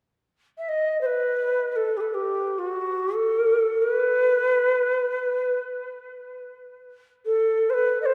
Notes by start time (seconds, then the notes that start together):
0.58 E5
0.69 D#5
1.01 C5
1.06 B4
1.72 A4 B4
1.97 G4 A4
2.09 A4
2.14 G4
2.58 F#4
3.15 A4
3.82 B4
7.26 A4
7.70 B4 C5
8.02 C5 D#5